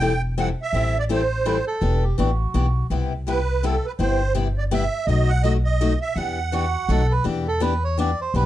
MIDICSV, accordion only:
0, 0, Header, 1, 2, 480
1, 0, Start_track
1, 0, Key_signature, 1, "minor"
1, 0, Tempo, 362538
1, 968, Time_signature, 3, 2, 24, 8
1, 11197, End_track
2, 0, Start_track
2, 0, Title_t, "Accordion"
2, 0, Program_c, 0, 21
2, 0, Note_on_c, 0, 79, 89
2, 289, Note_off_c, 0, 79, 0
2, 520, Note_on_c, 0, 78, 73
2, 645, Note_off_c, 0, 78, 0
2, 826, Note_on_c, 0, 76, 86
2, 1298, Note_off_c, 0, 76, 0
2, 1309, Note_on_c, 0, 74, 71
2, 1382, Note_off_c, 0, 74, 0
2, 1487, Note_on_c, 0, 72, 71
2, 2189, Note_off_c, 0, 72, 0
2, 4346, Note_on_c, 0, 71, 73
2, 4815, Note_on_c, 0, 69, 63
2, 4830, Note_off_c, 0, 71, 0
2, 5107, Note_on_c, 0, 71, 62
2, 5114, Note_off_c, 0, 69, 0
2, 5189, Note_off_c, 0, 71, 0
2, 5293, Note_on_c, 0, 72, 77
2, 5736, Note_off_c, 0, 72, 0
2, 6062, Note_on_c, 0, 74, 64
2, 6145, Note_off_c, 0, 74, 0
2, 6266, Note_on_c, 0, 76, 75
2, 6704, Note_off_c, 0, 76, 0
2, 6705, Note_on_c, 0, 75, 80
2, 7002, Note_on_c, 0, 78, 101
2, 7020, Note_off_c, 0, 75, 0
2, 7183, Note_off_c, 0, 78, 0
2, 7186, Note_on_c, 0, 75, 93
2, 7323, Note_off_c, 0, 75, 0
2, 7474, Note_on_c, 0, 75, 78
2, 7934, Note_off_c, 0, 75, 0
2, 7963, Note_on_c, 0, 76, 84
2, 8144, Note_on_c, 0, 78, 79
2, 8164, Note_off_c, 0, 76, 0
2, 9359, Note_off_c, 0, 78, 0
2, 11197, End_track
0, 0, End_of_file